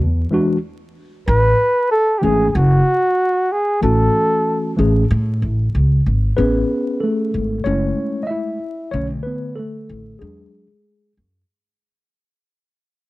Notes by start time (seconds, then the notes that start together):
0.00 E2
0.31 E3 G#3 D4 F#4
1.28 A1 B4
1.92 A4
2.18 E3 A3 G4
2.23 G#1 C#4 G#4
2.50 G#4
2.55 F#1 F#4
3.52 G#4
3.81 A1 E3 A3 C#4 F#4 A4
4.77 A1 E3 A3 C#4 G#4
5.11 A2
5.42 A1
5.75 C#2
6.06 G#1
6.37 A1 B3 C#4 G#4 B4
7.00 A3 A4
7.34 G#1
7.64 F#1 G#3 A3 C#4 E4 C#5
8.23 D#5 E5
8.31 E4
8.91 B1 D3 A3 C#4 C#5
9.23 B3 B4
9.56 A3 A4
9.89 A1
10.19 E2 F#3 G#3 D4 G#4
11.17 F#2